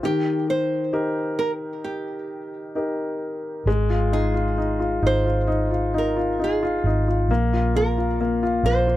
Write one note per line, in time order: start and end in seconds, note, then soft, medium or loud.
0.03 3.63 D#3 medium
0.03 0.50 G4 medium
0.50 1.38 C5 medium
0.93 1.81 D#4 soft
0.93 1.81 G4 soft
0.93 1.81 A#4 soft
1.39 1.51 A#4 medium
1.84 3.18 G4 medium
2.75 3.64 D#4 soft
2.75 3.64 G4 soft
2.75 3.65 A#4 soft
3.66 4.99 G#1 medium
3.66 7.26 G#3 medium
3.90 4.33 F4 medium
4.12 4.56 D#4 soft
4.12 5.06 G#4 medium
4.34 4.78 F4 soft
4.58 5.01 D#4 medium
4.80 5.24 F4 soft
5.02 6.80 G#1 medium
5.02 5.46 D#4 soft
5.07 5.92 C5 medium
5.26 5.70 F4 soft
5.47 5.93 D#4 medium
5.71 6.15 F4 soft
5.94 6.38 D#4 medium
5.98 6.43 A#4 medium
6.17 6.61 F4 soft
6.39 6.85 D#4 soft
6.44 7.05 G#4 medium
6.63 7.07 F4 medium
6.84 7.26 G#1 medium
6.84 7.29 D#4 medium
7.08 7.29 F4 soft
7.28 8.59 A#1 medium
7.28 7.74 A#3 medium
7.53 7.96 F4 soft
7.76 8.19 A#3 medium
7.76 8.65 A#4 medium
7.98 8.41 F4 soft
8.21 8.63 A#3 medium
8.43 8.86 F4 medium
8.63 8.97 A#1 medium
8.63 8.97 A#3 soft
8.63 8.97 C5 loud
8.88 8.97 F4 soft